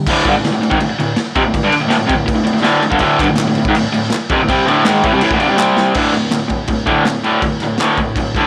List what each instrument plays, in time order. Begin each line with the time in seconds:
0.07 overdriven electric guitar D2 A2 D3, kick, crash
0.25 overdriven electric guitar G2 D3, kick, crash
0.36 overdriven electric guitar D2 A2
0.45 overdriven electric guitar D2 A2, snare, crash
0.53 overdriven electric guitar D2 A2
0.62 overdriven electric guitar D2 A2, crash
0.70 overdriven electric guitar G#2 D#3, kick
0.79 overdriven electric guitar D2 A2, crash
0.90 muted overdriven electric guitar stroke
0.99 overdriven electric guitar D2 A2, crash
1.16 muted overdriven electric guitar stroke, snare, crash
1.36 overdriven electric guitar F2 C3, kick, crash
1.45 overdriven electric guitar D2 A2
1.54 overdriven electric guitar D2 A2, kick, crash
1.63 overdriven electric guitar G2 D3
1.71 muted overdriven electric guitar stroke, snare, crash
1.80 overdriven electric guitar D2 A2
1.88 overdriven electric guitar D2 A2, snare, crash
1.97 overdriven electric guitar D2 A2
2.06 overdriven electric guitar F2 C3, kick
2.10 crash
2.15 overdriven electric guitar D2 A2
2.26 overdriven electric guitar D2 A2, kick, crash
2.34 overdriven electric guitar D2 A2
2.44 overdriven electric guitar D2 A2, crash
2.53 overdriven electric guitar D2 A2, snare
2.62 overdriven electric guitar D2 A2 D3, snare, crash
2.81 overdriven electric guitar D2 A2, crash
2.89 overdriven electric guitar G2 D3, kick
2.99 overdriven electric guitar D2 A2 D3, kick, crash
3.19 overdriven electric guitar G2 D3, kick, snare, clap, crash
3.29 overdriven electric guitar D2 A2
3.36 snare, clap, crash
3.40 overdriven electric guitar D2 A2
3.48 overdriven electric guitar D2 A2
3.55 overdriven electric guitar D2 A2, crash
3.65 overdriven electric guitar G#2, kick
3.69 overdriven electric guitar D#3
3.75 overdriven electric guitar D2 A2, crash
3.87 muted overdriven electric guitar stroke
3.92 overdriven electric guitar D2 A2, crash
4.02 snare
4.10 snare, clap, crash
4.15 muted overdriven electric guitar stroke
4.29 overdriven electric guitar F2 C3, kick, crash
4.42 overdriven electric guitar D2 A2
4.48 overdriven electric guitar C3 G3 C4, kick, crash
4.67 overdriven electric guitar D2 A2 D3, crash
4.85 overdriven electric guitar G#2 D#3 G#3, snare, clap, crash
5.03 overdriven electric guitar A2 E3, kick, crash
5.13 overdriven electric guitar C3 G3
5.21 overdriven electric guitar A2 E3, crash
5.31 overdriven electric guitar D2 A2, kick
5.39 overdriven electric guitar G2 D3, crash
5.47 overdriven electric guitar C3 G3
5.57 overdriven electric guitar C3 G3 C4, snare, clap
5.77 snare
5.94 overdriven electric guitar D2 A2 D3, kick, crash
6.12 overdriven electric guitar D2 A2, crash
6.31 overdriven electric guitar D2 A2, snare, clap, crash
6.48 overdriven electric guitar D2 A2, kick, crash
6.67 overdriven electric guitar D2 A2, kick, crash
6.86 overdriven electric guitar D2 A2 D3, kick, crash
7.05 overdriven electric guitar D2 A2, snare, clap, crash
7.24 overdriven electric guitar D2 A2 D3, crash
7.41 overdriven electric guitar D2 A2, kick, crash
7.60 overdriven electric guitar D2 A2, snare, crash
7.78 overdriven electric guitar D2 A2 D3, snare, clap, crash
7.97 overdriven electric guitar D2 A2, kick, crash
8.16 overdriven electric guitar D2 A2, kick, crash
8.35 overdriven electric guitar D2 A2 D3, kick, crash